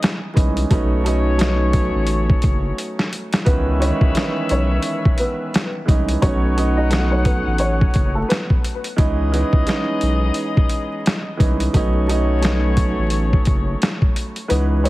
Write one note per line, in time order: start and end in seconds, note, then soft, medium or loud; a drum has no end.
0.00 0.24 E3 medium
0.00 0.25 G#3 medium
0.00 0.25 B3 medium
0.00 0.32 B3 medium
0.00 0.25 C#4 medium
0.00 0.26 D#4 loud
0.00 0.32 G#4 medium
0.00 0.32 D#5 loud
0.00 snare loud
0.00 closed hi-hat medium
0.34 0.65 C2 loud
0.34 0.67 E3 medium
0.34 0.67 G#3 medium
0.34 0.68 B3 medium
0.34 0.68 C#4 medium
0.34 0.68 D#4 medium
0.34 kick loud
0.34 closed hi-hat medium
0.57 closed hi-hat medium
0.70 1.91 B1 loud
0.70 1.03 F#3 medium
0.70 1.03 A3 medium
0.70 3.08 A3 medium
0.70 1.03 B3 medium
0.70 1.03 C#4 medium
0.70 1.04 D#4 loud
0.70 3.08 F#4 medium
0.70 3.08 C#5 loud
0.70 kick loud
0.70 closed hi-hat medium
1.04 1.36 F#3 loud
1.04 1.37 A3 medium
1.04 1.37 B3 medium
1.04 1.38 C#4 medium
1.04 1.38 D#4 loud
1.04 closed hi-hat medium
1.38 3.32 F#3 medium
1.38 3.32 A3 medium
1.38 3.33 B3 medium
1.38 3.33 C#4 medium
1.38 3.33 D#4 loud
1.38 snare loud
1.38 closed hi-hat medium
1.73 kick medium
1.73 closed hi-hat medium
1.95 2.35 A1 medium
2.07 closed hi-hat medium
2.30 kick medium
2.42 2.72 F#1 loud
2.42 kick loud
2.42 closed hi-hat medium
2.78 closed hi-hat loud
2.99 snare medium
3.13 closed hi-hat medium
3.33 snare loud
3.33 closed hi-hat medium
3.45 3.92 C#2 loud
3.45 3.79 D#3 loud
3.45 3.78 E3 medium
3.45 3.78 G#3 medium
3.45 3.79 B3 medium
3.45 3.78 B3 medium
3.45 5.83 C#4 medium
3.45 3.79 C#4 medium
3.45 5.83 B4 medium
3.45 3.77 B4 loud
3.45 5.83 E5 loud
3.45 kick loud
3.45 closed hi-hat medium
3.80 4.14 D#3 loud
3.80 4.13 E3 medium
3.80 4.13 G#3 medium
3.80 4.13 B3 medium
3.80 4.46 C#4 medium
3.80 4.14 C#4 medium
3.80 4.46 C#5 medium
3.80 closed hi-hat medium
4.01 4.13 C#2 medium
4.01 kick loud
4.15 5.77 D#3 loud
4.15 5.76 E3 medium
4.15 5.76 G#3 medium
4.15 5.77 B3 medium
4.15 5.77 C#4 medium
4.15 snare loud
4.15 closed hi-hat medium
4.49 4.79 B1 loud
4.49 5.16 C#4 medium
4.49 5.15 C#5 medium
4.49 closed hi-hat medium
4.83 closed hi-hat medium
5.05 kick medium
5.18 5.71 B3 medium
5.18 5.71 B4 medium
5.18 closed hi-hat medium
5.54 snare loud
5.54 closed hi-hat medium
5.85 6.17 C2 medium
5.85 6.19 E3 medium
5.85 6.19 G#3 medium
5.85 6.20 B3 medium
5.85 6.20 C#4 medium
5.85 6.20 D#4 medium
5.85 kick medium
5.85 closed hi-hat medium
6.08 closed hi-hat medium
6.22 7.42 B1 loud
6.22 6.54 F#3 medium
6.22 6.55 A3 medium
6.22 6.55 B3 medium
6.22 6.74 C#4 medium
6.22 6.55 C#4 medium
6.22 8.60 D#4 loud
6.22 6.56 D#4 loud
6.22 6.74 C#5 loud
6.22 8.60 C#5 medium
6.22 8.60 F#5 loud
6.22 kick loud
6.22 closed hi-hat medium
6.56 6.88 F#3 medium
6.56 6.89 A3 medium
6.56 6.89 B3 medium
6.56 6.90 C#4 medium
6.56 6.90 D#4 loud
6.56 closed hi-hat medium
6.77 6.90 D#4 medium
6.77 6.90 D#5 medium
6.90 8.84 F#3 medium
6.90 8.84 A3 medium
6.90 8.85 B3 medium
6.90 7.10 B3 medium
6.90 8.85 C#4 medium
6.90 8.85 D#4 loud
6.90 7.09 B4 medium
6.90 snare loud
6.90 closed hi-hat medium
7.11 7.25 C#4 medium
7.11 7.24 C#5 medium
7.25 7.57 B3 medium
7.25 7.56 B4 medium
7.25 kick medium
7.25 closed hi-hat medium
7.47 7.87 A1 medium
7.58 8.12 C#4 medium
7.58 8.11 C#5 medium
7.58 closed hi-hat medium
7.81 kick loud
7.94 8.24 F#1 medium
7.94 kick loud
7.94 closed hi-hat medium
8.15 8.28 A3 medium
8.15 8.28 A4 medium
8.29 8.60 B3 medium
8.29 8.60 B4 medium
8.29 snare loud
8.29 closed hi-hat medium
8.50 kick medium
8.65 closed hi-hat medium
8.84 closed hi-hat medium
8.96 9.44 C#2 loud
8.96 9.30 E3 medium
8.96 9.30 G#3 medium
8.96 11.35 B3 medium
8.96 9.30 B3 medium
8.96 9.31 C#4 medium
8.96 9.31 D#4 loud
8.96 11.35 G#4 medium
8.96 11.35 D#5 loud
8.96 kick loud
8.96 closed hi-hat medium
9.32 9.65 E3 medium
9.32 9.65 G#3 medium
9.32 9.65 B3 medium
9.32 9.66 C#4 medium
9.32 9.66 D#4 loud
9.32 closed hi-hat medium
9.53 9.65 C#2 medium
9.53 kick loud
9.66 11.28 E3 medium
9.66 11.28 G#3 medium
9.66 11.28 B3 medium
9.66 11.29 C#4 medium
9.66 11.29 D#4 loud
9.66 snare loud
9.66 closed hi-hat medium
10.01 10.31 B1 medium
10.01 closed hi-hat medium
10.34 closed hi-hat medium
10.57 kick loud
10.70 closed hi-hat medium
11.06 snare loud
11.06 closed hi-hat medium
11.37 11.68 C2 loud
11.37 11.71 E3 medium
11.37 11.71 G#3 medium
11.37 11.71 B3 medium
11.37 11.72 C#4 medium
11.37 11.72 D#4 medium
11.37 kick medium
11.37 closed hi-hat medium
11.60 closed hi-hat medium
11.73 12.94 B1 loud
11.73 12.06 F#3 medium
11.73 12.06 A3 medium
11.73 14.12 A3 medium
11.73 12.07 B3 medium
11.73 12.07 C#4 medium
11.73 12.07 D#4 loud
11.73 14.12 F#4 medium
11.73 14.12 C#5 loud
11.73 kick loud
11.73 closed hi-hat medium
12.07 12.40 F#3 medium
12.07 12.40 A3 medium
12.07 12.41 B3 medium
12.07 12.41 C#4 medium
12.07 12.42 D#4 loud
12.07 closed hi-hat medium
12.41 14.35 F#3 medium
12.41 14.36 A3 medium
12.41 14.36 B3 medium
12.41 14.36 C#4 medium
12.41 14.37 D#4 loud
12.41 snare loud
12.41 closed hi-hat medium
12.77 kick medium
12.77 closed hi-hat medium
12.99 13.38 A1 medium
13.10 closed hi-hat medium
13.33 kick medium
13.45 13.75 F#1 loud
13.45 kick loud
13.45 closed hi-hat medium
13.82 snare loud
13.82 closed hi-hat medium
14.02 kick medium
14.16 closed hi-hat medium
14.36 closed hi-hat medium
14.48 14.89 C#2 loud
14.48 14.81 E3 medium
14.48 14.82 G#3 medium
14.48 14.82 B3 medium
14.48 14.81 B3 medium
14.48 14.82 C#4 medium
14.48 14.83 D#4 loud
14.48 14.80 B4 medium
14.48 closed hi-hat medium
14.83 14.89 E3 medium
14.83 14.89 G#3 medium
14.83 14.89 B3 medium
14.83 14.89 C#4 medium
14.83 14.89 D#4 loud
14.83 14.89 C#5 medium
14.83 closed hi-hat medium